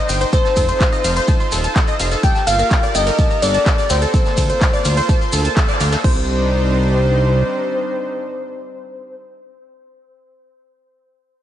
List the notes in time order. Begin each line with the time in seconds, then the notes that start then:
Already playing: G3 A#3 D#4 C5
0.09 G1 G5 G6, closed hi-hat, open hi-hat, ride, maracas
0.21 C5 C6, closed hi-hat, maracas
0.32 F4 A4 C5 A5, kick, closed hi-hat, maracas
0.45 A5 A6, snare, maracas
0.56 F1 A4 A5, kick, closed hi-hat, open hi-hat, ride, maracas
0.68 C5 C6, closed hi-hat, maracas
0.80 F5 F6, kick, snare, clap, closed hi-hat, maracas
0.92 D#5 D#6, maracas
1.04 F1 F5 F6, closed hi-hat, open hi-hat, ride, maracas
1.16 C5 C6, closed hi-hat, maracas
1.27 A5 A6, kick, closed hi-hat, maracas
1.40 C6, maracas
1.52 D#1 A4 A5, open hi-hat, ride, maracas
1.64 A5 A6, closed hi-hat, maracas
1.75 A4 A5, kick, snare, clap, closed hi-hat, maracas
1.87 D#5 D#6, closed hi-hat, maracas
2.00 F1 F5 F6, closed hi-hat, open hi-hat, ride, maracas
2.11 A4 A5, snare, closed hi-hat, maracas
2.23 A#3 G4 A4 A#4 G5 A5, kick, closed hi-hat, maracas
2.35 A5 A6, snare, maracas
2.47 G1 A4 F5 A5, closed hi-hat, open hi-hat, ride, maracas
2.59 A#4 A#5, closed hi-hat, maracas
2.71 G5 G6, kick, snare, clap, closed hi-hat, maracas
2.83 D5 D6, closed hi-hat, maracas
2.95 G1 D#5 G5 G6, closed hi-hat, open hi-hat, ride, maracas
3.06 A#4 A#5, snare, closed hi-hat, maracas
3.19 A5 A6, kick, closed hi-hat, maracas
3.30 A#5 A#6, maracas
3.42 G1 A4 D5 A5, closed hi-hat, open hi-hat, ride, maracas
3.54 A5 A6, closed hi-hat, maracas
3.66 A4 A5, kick, snare, clap, closed hi-hat, maracas
3.78 D5 D6, snare, maracas
3.90 D2 C5 G5 G6, snare, closed hi-hat, open hi-hat, ride, maracas
4.02 A4 A5, closed hi-hat, maracas
4.14 F4 A4 C5 A5, kick, closed hi-hat, maracas
4.26 A5 A6, snare, maracas
4.37 D2 A4 A5, kick, closed hi-hat, open hi-hat, ride, maracas
4.50 C5 C6, closed hi-hat, maracas
4.61 F5 F6, kick, snare, clap, closed hi-hat, maracas
4.73 D5 D6, maracas
4.85 D2 F5 F6, closed hi-hat, open hi-hat, ride, maracas
4.97 C5 C6, closed hi-hat, maracas
5.09 A5 A6, kick, closed hi-hat, maracas
5.21 C6, maracas
5.32 D2 A4 A5, open hi-hat, ride, maracas
5.45 A5 A6, closed hi-hat, maracas
5.56 A4 A5, kick, snare, clap, closed hi-hat, maracas
5.68 D5 D6, closed hi-hat, maracas
5.80 D2 F5 F6, closed hi-hat, open hi-hat, ride, maracas
5.92 A4 A5, snare, closed hi-hat, maracas
6.04 C2 G3 D4 D#4 C5, kick, crash